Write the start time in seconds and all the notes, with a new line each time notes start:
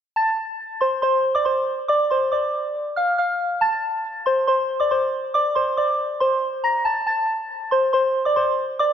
0.16 A5 A6
0.81 C5 C6
1.02 C5 C6
1.35 D5 D6
1.45 C5 C6
1.88 D5 D6
2.10 C5 C6
2.32 D5 D6
2.96 F5 F6
3.18 F5 F6
3.61 A5 A6
4.26 C5 C6
4.47 C5 C6
4.80 D5 D6
4.91 C5 C6
5.34 D5 D6
5.55 C5 C6
5.77 D5 D6
6.20 C5 C6
6.64 A#5 A#6
6.85 A5 A6
7.07 A5 A6
7.71 C5 C6
7.93 C5 C6
8.25 D5 D6
8.36 C5 C6
8.79 D5 D6